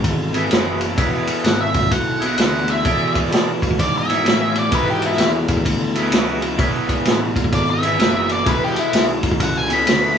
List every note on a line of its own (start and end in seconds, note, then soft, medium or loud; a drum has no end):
0.00 0.50 G#1 medium
0.00 0.36 E2 medium
0.00 0.33 B2 medium
0.00 0.32 E3 medium
0.00 ride medium
0.04 kick medium
0.33 0.48 E2 medium
0.33 0.50 B2 medium
0.33 0.52 E3 medium
0.33 0.81 E4 medium
0.33 0.81 G#4 medium
0.33 0.82 B4 medium
0.33 ride medium
0.49 0.96 F#1 medium
0.49 0.97 E2 medium
0.49 0.97 B2 medium
0.49 1.00 E3 medium
0.49 snare loud
0.49 ride medium
0.81 ride medium
0.97 1.26 E1 medium
0.97 2.24 E2 medium
0.97 2.20 B2 medium
0.97 2.21 E3 medium
0.97 1.64 E4 medium
0.97 1.65 G#4 medium
0.97 1.65 B4 medium
0.97 kick loud
0.97 ride medium
1.27 muted picked electric bass stroke soft
1.27 ride medium
1.44 1.90 G#1 loud
1.44 1.60 F#5 medium
1.44 snare loud
1.44 ride medium
1.61 1.91 E5 medium
1.74 kick medium
1.74 ride medium
1.83 kick medium
1.91 2.37 B1 medium
1.91 2.37 F#5 loud
1.91 kick medium
1.91 ride medium
2.20 2.38 B2 medium
2.20 2.41 E3 medium
2.20 2.68 E4 medium
2.20 2.68 G#4 medium
2.20 2.68 B4 medium
2.20 ride medium
2.25 2.38 E2 medium
2.38 2.84 D2 medium
2.38 2.84 E2 medium
2.38 2.85 B2 medium
2.38 snare loud
2.38 ride medium
2.42 2.88 E3 medium
2.42 2.71 F#5 medium
2.68 3.15 E5 loud
2.68 ride medium
2.84 4.12 E2 medium
2.84 3.31 E2 medium
2.84 4.08 B2 medium
2.84 3.51 E4 medium
2.84 3.52 G#4 medium
2.84 3.52 D5 medium
2.84 kick loud
2.84 ride medium
2.89 4.08 E3 medium
3.15 kick medium
3.15 ride medium
3.26 snare soft
3.32 3.77 B2 medium
3.32 snare loud
3.32 ride medium
3.62 kick medium
3.62 ride medium
3.71 kick medium
3.79 4.24 G#2 medium
3.79 3.95 D5 loud
3.79 kick medium
3.79 ride medium
3.98 4.57 E5 medium
4.09 4.24 E2 medium
4.09 4.26 B2 medium
4.09 4.28 E3 medium
4.09 4.56 E4 medium
4.09 4.56 G#4 medium
4.09 4.56 C#5 medium
4.09 ride medium
4.25 4.71 E2 medium
4.25 4.71 A2 loud
4.25 4.72 B2 medium
4.25 4.75 E3 medium
4.25 snare loud
4.25 ride medium
4.55 4.73 D5 loud
4.55 ride medium
4.71 5.98 E2 medium
4.71 5.17 G#2 medium
4.71 5.94 B2 medium
4.71 5.38 E4 medium
4.71 5.39 G#4 medium
4.71 5.39 B4 medium
4.71 4.89 B4 medium
4.71 kick loud
4.71 ride medium
4.75 5.94 E3 medium
4.90 5.04 G4 medium
5.02 5.29 E4 loud
5.02 ride medium
5.12 snare soft
5.18 5.64 E2 medium
5.18 snare loud
5.18 ride loud
5.48 kick medium
5.48 ride medium
5.57 kick medium
5.65 6.11 D2 medium
5.65 kick medium
5.65 ride loud
5.94 6.12 E2 medium
5.94 6.12 B2 medium
5.94 6.16 E3 medium
5.94 6.42 E4 medium
5.94 6.43 G#4 medium
5.94 6.44 B4 medium
5.94 ride medium
6.12 6.57 C#2 medium
6.12 6.58 E2 medium
6.12 6.59 B2 medium
6.12 snare loud
6.12 ride loud
6.16 6.62 E3 medium
6.42 ride medium
6.58 7.04 B1 medium
6.58 7.84 E2 medium
6.58 7.82 B2 medium
6.58 7.25 E4 medium
6.58 7.26 G#4 medium
6.58 7.26 B4 medium
6.58 kick loud
6.58 ride medium
6.62 7.80 E3 medium
6.89 kick medium
6.89 ride medium
7.04 7.33 A1 loud
7.04 snare loud
7.04 ride medium
7.36 muted picked electric bass stroke soft
7.36 kick medium
7.36 ride medium
7.44 kick medium
7.52 7.98 G#1 medium
7.52 7.69 D5 loud
7.52 kick loud
7.52 ride medium
7.71 8.30 E5 loud
7.81 7.98 E2 medium
7.81 7.98 B2 medium
7.81 8.00 E3 loud
7.81 8.30 E4 medium
7.81 8.30 G#4 medium
7.81 ride medium
7.85 8.31 B4 medium
7.98 8.45 F#1 loud
7.98 8.44 E2 medium
7.98 8.46 B2 medium
7.98 8.48 E3 medium
7.98 snare loud
7.98 ride medium
8.29 8.47 D5 loud
8.29 ride medium
8.45 8.74 E1 medium
8.45 9.72 E2 medium
8.45 9.69 B2 loud
8.45 9.68 E3 medium
8.45 9.13 E4 medium
8.45 9.12 G#4 medium
8.45 9.13 B4 medium
8.45 8.63 B4 medium
8.45 kick loud
8.45 ride medium
8.64 8.79 G4 medium
8.76 9.03 E4 medium
8.76 muted picked electric bass stroke soft
8.76 ride medium
8.93 9.39 B1 medium
8.93 snare loud
8.93 ride medium
9.23 kick medium
9.23 ride medium
9.32 kick medium
9.40 9.86 C#2 medium
9.40 9.57 F#5 loud
9.40 kick medium
9.40 ride loud
9.57 9.72 G#5 loud
9.68 9.85 B2 medium
9.68 9.88 E3 medium
9.68 10.16 E4 medium
9.68 10.17 G#4 medium
9.68 10.17 B4 medium
9.68 ride medium
9.72 9.85 E2 medium
9.72 10.18 B5 medium
9.85 10.18 D2 loud
9.85 10.18 E2 medium
9.85 10.18 B2 medium
9.85 10.18 E3 medium
9.85 snare loud
9.85 ride loud